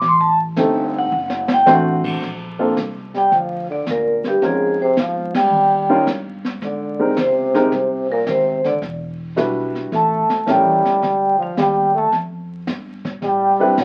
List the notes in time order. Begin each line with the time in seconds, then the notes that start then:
0.01 A1, brush sweep, kick, snare
0.08 C6
0.21 A5
0.56 G1 A3 C4 D#4 G4 A4, kick, snare, hi-hat pedal
0.99 F#5
1.12 F#1
1.30 snare
1.48 snare
1.54 G5
1.66 A1 A3 C4 D4 F#4 C5, snare, hi-hat pedal
1.73 F#5
2.04 kick, crash
2.22 A#1, brush sweep, kick, snare
2.59 A#3 C4 D4 F4 A4
2.77 C2, kick, snare, hi-hat pedal
3.14 G3 G5, snare
3.32 D2 F3 F5, brush sweep, kick, snare
3.70 D3 D5
3.86 D2 A#2, kick, snare, hi-hat pedal
3.91 A#4
4.24 G2 G4, snare
4.42 F2 G#2 G#3 C4 C#4 F4 G#4 A#4, brush sweep, kick, snare
4.81 C3 C5
4.97 G#2 F3 F5, kick, snare, hi-hat pedal
5.34 G3 G5, snare, ride
5.51 D#2, brush sweep
5.89 G3 C#4 D#4 F4 A#4
6.07 G2, kick, snare, hi-hat pedal
6.45 snare
6.61 G#2 D3 D5, brush sweep, kick, snare
6.99 G#3 C4 D#4 G4 A#4
7.16 C#2 C3 C5, kick, snare, hi-hat pedal
7.54 G#3 C4 D#4 G4 A#4, snare
7.71 C2, brush sweep, kick, snare
8.10 A#2 A#4
8.26 G#1 C3 C5, kick, snare, hi-hat pedal
8.64 D3 D5, snare
8.82 E1, brush sweep, kick, snare
9.36 B1 G3 D4 E4 F#4 B4, kick, snare, hi-hat pedal
9.75 snare
9.92 A1 A3 A5, brush sweep, kick, snare
10.30 snare
10.46 A#1 G3 A3 C#4 E4 G4 A#4, kick, snare, hi-hat pedal
10.50 G5
10.64 A1
10.82 G1, snare
11.02 D2, brush sweep, kick, snare
11.39 F3 F5
11.57 D#2 G3 G5, kick, snare, hi-hat pedal
11.95 A3 A5
12.12 F2, brush sweep, kick, snare
12.67 G2, kick, snare, hi-hat pedal
13.05 kick, snare
13.22 A2 G3, brush sweep, kick, snare
13.27 G5
13.59 G3 C4 D4 E4 B4, muted upright bass stroke
13.77 B2 F#3, kick, snare, hi-hat pedal